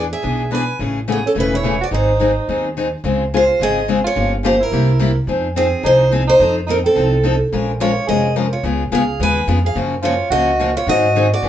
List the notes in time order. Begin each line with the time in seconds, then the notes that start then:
Already playing: E2
0.13 G#4 E5
0.22 B1 E3 B3 D4 G#4
0.51 E3 B3 D4 G#4 B4 G#5
0.79 A1 C#3 E3 A3 C#4 G#4
1.08 C#3 E3 A3 B3 C#4 G#4
1.12 G#4
1.26 C#4 A4
1.35 E1 C#3 E3 A3 C#4 E4 G#4
1.40 B4
1.54 E4 C#5
1.63 C#3 E3 A3 C#4 G#4
1.81 F#4 D5
1.91 G#1 D#3 F#3 C4 D#4 G#4 C5
2.20 D#3 F#3 C4 D#4 G#4
2.48 D#2 D#3 F#3 C4 D#4 G#4
2.77 D#3 F#3 C4 D#4 G#4
3.04 C#2 C#3 G#3 C4 F4 G#4
3.34 C#3 G#3 C4 F4 G#4 C5
3.60 G#1 C#3 G#3 C4 F4 G#4 D#5
3.88 C#3 G#3 C4 F4 G#4
4.04 F4 C#5
4.15 G1 C#3 F3 A#3 F4 G4
4.43 C#3 F3 A#3 F4 G4 C5
4.61 E4 A#4
4.72 C2 C3 G3 A#3 E4 G4
4.99 C3 G3 A#3 E4 G4
5.27 F2 F3 C4 D#4 G#4
5.56 F3 C4 D#4 G#4
5.83 C2 F3 C4 D#4 G#4 C5
6.11 F3 C4 D#4 G#4
6.27 D#4 C5
6.40 F2 F3 C4 D#4 A4
6.67 F3 C4 D#4 A4 A#4
6.83 C4 A4
6.95 C2 F3 C4 D#4 A4
7.24 F3 C4 D#4 A4
7.52 A#1 F3 G#3 C#4 F4 A#4
7.80 F3 G#3 C#4 F4 A#4 C#5
8.07 F1 F3 G#3 C#4 F4 G#4 A#4 D#5
8.36 F3 G#3 C#4 F4 A#4
8.53 F4 C#5
8.63 C#2 C#3 G#3 B3 F4 G#4
8.92 C#2 C#3 G#3 B3 F4 G#4 F5
9.20 D#2 C#3 G#3 B3 F4 G#4 B4 G#5
9.47 F2 C#3 G#3 B3 F4 G#4
9.65 G#4 F5
9.75 F#2 C#3 F3 A#3 C#4 F#4
10.02 C#3 F3 A#3 C#4 F4 F#4 C#5
10.30 C#2 C#3 F3 A#3 C#4 F#4 D#5
10.60 C#3 F3 A#3 C#4 F#4
10.76 F4 C#5
10.87 G#2 D#3 F#3 C4 D#4 F#4 G#4 D#5
11.16 D#3 F#3 C4 D#4 G#4
11.34 F#4 D5
11.43 E2 E3 B3 D4 G#4